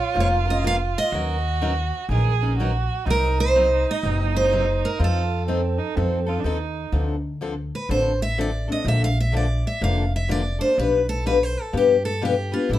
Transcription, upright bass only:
0.16 F1
1.12 D#2
2.09 A#1
3.06 C2
4.03 F#1
5.00 F2
5.97 F2
6.44 D#2
6.92 D2
7.89 A1
8.85 A#1
9.82 F1
10.78 B1
11.73 G2
12.69 A1

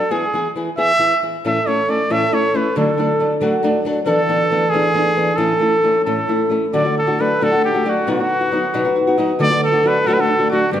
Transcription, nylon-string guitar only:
0.10 E3 B3 E4 G#4
0.34 E3 B3 E4 G#4
0.56 E3 B3 E4 G#4
0.77 E3 B3 E4 G#4
0.99 E3 B3 E4 G#4
1.22 E3 B3 E4 G#4
1.45 A2 E3 A3 C#4 E4 A4
1.67 A3 C#4 E4 A4
1.88 A3 C#4 E4 A4
2.10 A2 E3 A3 C#4 E4 A4
2.31 A3 C#4 E4 A4
2.54 A3 C#4 E4 A4
2.76 D3 F#3 A3 D4 A4
2.98 F#3 A3 D4 A4
3.19 F#3 A3 D4 A4
3.41 D3 F#3 A3 D4 A4
3.63 F#3 A3 D4 A4
3.85 F#3 A3 D4 A4
4.05 E3 B3 D4 A4
4.29 E3 B3 D4 A4
4.50 E3 B3 D4 A4
4.73 E3 B3 D4 G#4
4.94 E3 B3 D4 G#4
5.16 E3 B3 D4 G#4
5.38 A2 E3 A3 C#4 E4 A4
5.60 A3 C#4 E4 A4
5.83 A3 C#4 E4 A4
6.07 A2 E3 A3 C#4 E4 A4
6.28 A3 C#4 E4 A4
6.50 A3 C#4 E4 A4
6.73 D3 F#3 A3 D4 F#4
6.85 A3 D4 F#4
7.07 A3 D4 F#4
7.18 F#3 A3 D4 F#4
7.42 D3 F#3 A3 D4 F#4
7.53 A3 D4 F#4
7.75 A3 D4 F#4
7.84 F#3 A3 D4 F#4
8.07 B2 F#3 B3 D#4 F#4
8.19 B3 D#4 F#4
8.41 B3 D#4 F#4
8.52 F#3 B3 D#4 F#4
8.74 B2 F#3 B3 D#4 F#4
8.85 B3 D#4 F#4
9.07 B3 D#4 F#4
9.18 F#3 B3 D#4 F#4
9.40 D3 F#3 A3 D4 F#4
9.51 A3 D4 F#4
9.72 A3 D4 F#4
9.84 F#3 A3 D4 F#4
10.06 D3 F#3 A3 D4 F#4
10.18 A3 D4 F#4
10.39 A3 D4 F#4
10.52 F#3 A3 D4 F#4
10.73 G2 D3 G3 B3 D4 G4

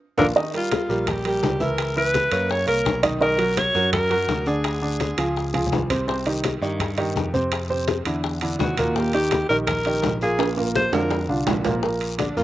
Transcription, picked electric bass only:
0.19 A#1
0.89 A#1
1.43 C#2
2.32 F#2
2.67 C2
2.85 B1
3.75 F#2
4.29 D2
5.18 C#2
5.72 C2
6.62 G2
7.16 F2
8.05 E2
8.59 D#2
9.50 A#1
10.03 A#1
10.92 F2
11.29 C2
11.46 A#1
12.37 F2

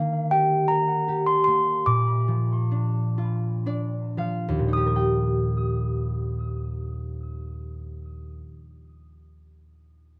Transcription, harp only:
Already playing: D#3 A#3 F4
0.31 G4
0.70 A#4
1.08 G4
1.47 A#3
1.86 A#2
2.28 F3
2.71 D4
3.18 F4
3.66 D4 D5
4.17 F3 F5
4.48 D#2
4.59 A#2
4.68 D#4
4.77 G4
4.86 A#4
4.96 G5

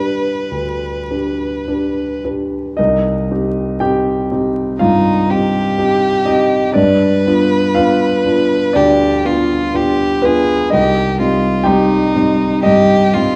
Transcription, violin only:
Already playing: B4
4.80 D#4
5.30 G4
6.76 B4
8.76 G4
9.25 F4
9.76 G4
10.25 G#4
10.74 G4
11.21 F4
11.66 D#4
12.63 G4
13.14 F4

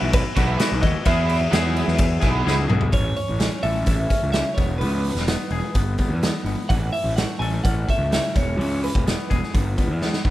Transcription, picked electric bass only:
0.02 B1
0.37 B1
0.72 B1
0.83 D#2
1.06 E2
1.52 E2
1.88 E2
2.23 B1
2.46 C#2
2.69 B1
2.93 A1
3.29 A1
3.64 A1
3.87 A1
4.23 C#2
4.57 E1
4.80 C#2
5.15 E1
5.51 E1
5.75 G1
6.08 E2
6.44 G1
6.70 A1
7.04 A1
7.40 A1
7.65 A1
7.98 C#2
8.36 E1
8.57 C#2
8.95 E1
9.31 E1
9.54 G1
9.87 E2
10.25 G1

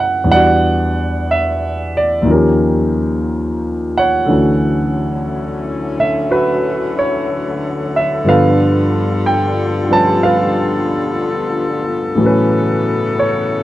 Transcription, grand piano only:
Already playing: F#2 C#3 E3 A3 B3 E4 F#4 A4 B4 C#5 E5
0.00 F#5
0.24 E2 E3
0.29 G3 D4 D5 F#5
0.36 F#4
1.31 E5
1.97 D5
2.22 D#2 D#3
2.27 F3 C#4 A#4
2.32 G4
3.98 C#5 F#5
4.26 D2 D3 E3
4.30 C#4 F#4
6.00 E5
6.31 F#4 B4
6.99 C#5
7.96 E5
8.24 G2 D3 F3 B3
8.28 A4 B4 F5
9.26 G5
9.89 F3 G3 C#4 B4
9.93 A5
10.23 B4 F5
12.15 A2 E3
12.20 F#3 C#4
12.26 B4
13.19 C#5

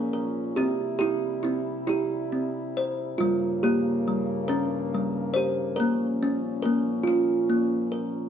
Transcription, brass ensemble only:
Already playing: A#2 F3 C#4
0.57 C3 G3 E4
3.18 G2 C#3 A#3
5.79 A#2 F3 C#4

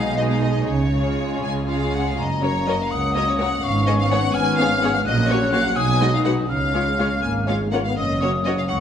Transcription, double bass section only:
Already playing: B1
0.67 C#2
1.43 C#2
2.18 F#1
2.90 C#2
3.63 G#1
4.34 G#1
5.05 A#1
5.77 B1
6.48 C#2
7.22 G#1
7.97 F#1
8.70 C#2

